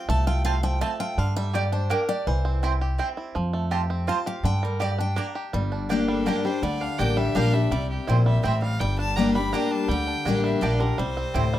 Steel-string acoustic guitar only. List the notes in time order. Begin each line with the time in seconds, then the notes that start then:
0.10 A5
0.27 G5
0.45 F5
0.63 G5
0.81 A5
1.00 G5
1.18 F5
1.36 E5
1.55 D5
1.73 C5
1.91 A#4
2.09 D5
2.27 C5
4.09 A5
4.27 F5
4.45 G5
4.65 A#4
4.82 D5
5.01 G5
5.18 A#5
5.54 G2
5.90 G3 A#3 D4 G4
6.26 G3 A#3 D4 G4
6.45 D4 G4
6.63 D3
6.99 G3 A#3 D4 G4
7.17 D4 G4
7.35 G3 A#3 D4 G4
7.54 D4 G4
7.72 C3
8.10 A#2
8.45 A2
8.81 G2
9.18 G3 A#3 D4 G4
9.36 D4 G4
9.54 G3 A#3 D4 G4
9.91 D3
10.27 G3 A#3 D4 G4
10.61 G3 A#3 D4 G4
10.80 D4 G4
10.99 C3
11.36 A2